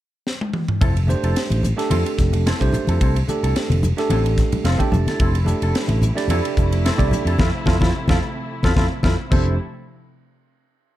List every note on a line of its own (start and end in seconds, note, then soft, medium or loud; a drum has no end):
0.27 snare medium
0.41 high tom medium
0.53 mid tom medium
0.68 floor tom medium
0.81 1.13 F1 loud
0.81 0.96 C4 medium
0.81 0.95 E4 medium
0.81 0.95 A4 medium
0.81 kick loud
0.81 ride medium
0.96 muted clean electric guitar stroke soft
0.96 ride medium
1.07 1.65 A3 medium
1.07 1.66 D4 medium
1.07 1.66 G4 medium
1.07 1.67 C5 medium
1.07 muted clean electric guitar stroke soft
1.07 hi-hat pedal medium
1.07 high conga medium
1.23 1.33 F1 medium
1.23 1.37 E4 soft
1.23 1.36 A4 medium
1.23 ride medium
1.36 muted clean electric guitar stroke soft
1.36 snare loud
1.36 ride medium
1.50 1.72 A1 medium
1.50 ride medium
1.50 high conga medium
1.63 hi-hat pedal medium
1.63 low conga medium
1.76 2.45 A3 medium
1.76 2.46 D4 medium
1.76 2.46 G4 medium
1.76 2.46 A4 loud
1.76 muted clean electric guitar stroke soft
1.76 snare soft
1.76 ride medium
1.90 2.02 F2 medium
1.90 2.05 C4 medium
1.90 2.06 E4 medium
1.90 2.05 A4 medium
1.90 ride medium
1.90 high conga medium
2.06 muted clean electric guitar stroke soft
2.06 ride medium
2.18 2.51 F1 medium
2.18 muted clean electric guitar stroke soft
2.18 kick medium
2.18 snare soft
2.18 hi-hat pedal medium
2.33 ride medium
2.33 low conga medium
2.46 2.61 C4 medium
2.46 2.60 E4 medium
2.46 2.60 A4 medium
2.46 snare loud
2.46 ride medium
2.60 2.71 C2 medium
2.60 3.17 A3 medium
2.60 3.18 D4 medium
2.60 3.18 G4 medium
2.60 3.18 C5 medium
2.60 muted clean electric guitar stroke soft
2.60 kick medium
2.60 ride medium
2.73 muted clean electric guitar stroke soft
2.73 hi-hat pedal medium
2.73 low conga medium
2.87 2.98 F2 medium
2.87 3.02 E4 soft
2.87 3.01 A4 medium
2.87 ride medium
2.87 high conga medium
3.01 3.22 C2 medium
3.01 3.16 C4 medium
3.01 3.16 E4 medium
3.01 3.16 A4 medium
3.01 kick loud
3.01 ride medium
3.16 muted clean electric guitar stroke soft
3.16 ride medium
3.28 3.86 A3 medium
3.28 3.86 D4 medium
3.28 3.86 G4 medium
3.28 3.87 A4 medium
3.28 muted clean electric guitar stroke soft
3.28 hi-hat pedal medium
3.28 high conga medium
3.43 3.53 C2 medium
3.43 3.56 E4 soft
3.43 3.56 A4 medium
3.43 ride medium
3.56 muted fingered electric bass stroke soft
3.56 muted clean electric guitar stroke soft
3.56 snare loud
3.56 ride medium
3.70 3.91 F1 medium
3.70 ride medium
3.70 high conga medium
3.83 hi-hat pedal medium
3.83 low conga medium
3.97 4.65 A3 medium
3.97 4.66 D4 medium
3.97 4.66 G4 medium
3.97 4.66 A4 loud
3.97 muted clean electric guitar stroke soft
3.97 snare soft
3.97 ride medium
4.10 4.42 A1 loud
4.10 4.25 C4 medium
4.10 4.25 E4 medium
4.10 4.25 A4 medium
4.10 ride medium
4.10 high conga medium
4.26 muted clean electric guitar stroke soft
4.26 ride medium
4.38 muted clean electric guitar stroke soft
4.38 kick medium
4.38 snare soft
4.38 hi-hat pedal medium
4.52 muted fingered electric bass stroke soft
4.52 ride medium
4.52 low conga medium
4.64 4.76 F1 loud
4.64 4.80 C4 medium
4.64 4.80 E4 medium
4.64 4.80 A4 medium
4.64 4.78 F5 medium
4.64 snare loud
4.64 ride medium
4.78 5.36 A3 medium
4.78 5.37 D4 medium
4.78 5.37 G4 medium
4.78 5.37 A4 medium
4.78 4.91 G5 medium
4.78 muted fingered electric bass stroke soft
4.78 muted clean electric guitar stroke soft
4.78 kick medium
4.78 ride medium
4.78 high conga medium
4.92 5.04 F1 medium
4.92 5.18 A5 medium
4.92 muted clean electric guitar stroke soft
4.92 hi-hat pedal medium
4.92 low conga medium
5.06 5.20 E4 soft
5.06 5.20 A4 medium
5.06 snare soft
5.06 ride medium
5.06 high conga medium
5.17 5.52 F1 loud
5.17 9.25 C3 medium
5.17 9.25 F3 medium
5.17 9.25 A3 medium
5.17 9.25 E4 medium
5.17 kick loud
5.17 ride medium
5.21 5.35 C4 medium
5.21 5.35 E4 medium
5.21 5.34 A4 medium
5.35 muted clean electric guitar stroke soft
5.35 ride medium
5.45 6.04 A3 medium
5.45 6.04 D4 medium
5.45 6.05 G4 medium
5.45 6.05 A4 medium
5.45 muted clean electric guitar stroke soft
5.45 hi-hat pedal medium
5.45 high conga medium
5.62 5.72 F1 medium
5.62 5.75 E4 soft
5.62 5.75 A4 medium
5.62 ride medium
5.75 muted clean electric guitar stroke soft
5.75 snare loud
5.75 ride medium
5.88 6.10 A1 medium
5.88 ride medium
5.88 high conga medium
6.02 hi-hat pedal medium
6.02 low conga medium
6.15 6.84 A3 medium
6.15 6.84 D4 medium
6.15 6.85 G4 medium
6.15 6.85 D5 loud
6.15 muted clean electric guitar stroke soft
6.15 snare soft
6.15 ride medium
6.28 6.40 F2 medium
6.28 6.45 C4 medium
6.28 6.45 E4 medium
6.28 6.45 A4 loud
6.28 ride medium
6.28 high conga medium
6.45 muted clean electric guitar stroke medium
6.45 ride medium
6.57 6.89 F1 medium
6.57 muted clean electric guitar stroke soft
6.57 kick medium
6.57 hi-hat pedal medium
6.72 ride medium
6.85 6.99 C4 medium
6.85 7.00 E4 medium
6.85 7.00 A4 medium
6.85 snare loud
6.85 ride medium
6.97 7.09 C2 medium
6.97 7.38 A3 medium
6.97 7.38 D4 medium
6.97 7.39 G4 medium
6.97 7.39 D5 medium
6.97 muted clean electric guitar stroke soft
6.97 kick medium
6.97 ride medium
6.97 high conga medium
7.11 muted clean electric guitar stroke soft
7.11 hi-hat pedal medium
7.11 low conga medium
7.25 7.35 F2 medium
7.25 7.40 A4 medium
7.25 ride medium
7.29 7.39 E4 medium
7.39 7.50 F2 medium
7.39 7.49 C4 medium
7.39 7.48 E4 medium
7.39 7.49 E4 medium
7.39 7.49 F4 medium
7.39 7.48 A4 medium
7.39 kick medium
7.39 snare loud
7.39 high conga loud
7.66 7.78 F2 medium
7.66 7.76 C4 medium
7.66 7.76 E4 medium
7.66 7.76 F4 medium
7.66 7.76 A4 medium
7.66 kick medium
7.66 snare medium
7.66 high conga medium
7.81 7.91 F2 medium
7.81 7.90 C4 medium
7.81 7.90 E4 medium
7.81 7.89 F4 medium
7.81 7.90 F4 medium
7.81 7.89 A4 medium
7.81 kick medium
7.81 snare medium
7.81 high conga loud
8.08 8.19 F2 loud
8.08 8.17 C4 medium
8.08 8.17 E4 loud
8.08 8.17 E4 medium
8.08 8.17 F4 medium
8.08 8.17 A4 medium
8.08 kick loud
8.08 snare loud
8.08 high conga loud
8.63 8.73 F2 medium
8.63 8.72 C4 medium
8.63 8.72 E4 medium
8.63 8.72 F4 medium
8.63 8.72 A4 medium
8.63 kick medium
8.63 snare medium
8.63 high conga medium
8.76 8.87 F2 medium
8.76 8.86 C4 medium
8.76 8.86 E4 medium
8.76 8.86 F4 medium
8.76 8.86 A4 medium
8.76 kick medium
8.76 snare medium
8.76 high conga loud
9.03 9.15 F2 medium
9.03 9.13 C4 medium
9.03 9.13 E4 medium
9.03 9.14 E4 medium
9.03 9.13 F4 medium
9.03 9.14 F4 medium
9.03 9.14 A4 medium
9.03 kick medium
9.03 snare medium
9.03 high conga loud
9.28 9.57 F1 medium
9.28 9.55 C3 medium
9.28 9.55 F3 medium
9.28 9.55 A3 medium
9.28 9.56 A3 medium
9.28 9.53 C4 medium
9.28 9.56 D4 medium
9.28 9.55 E4 medium
9.28 9.54 E4 medium
9.28 9.56 G4 medium
9.28 9.57 C5 medium
9.28 kick loud
9.28 crash medium
9.28 high conga medium
9.33 9.54 A4 medium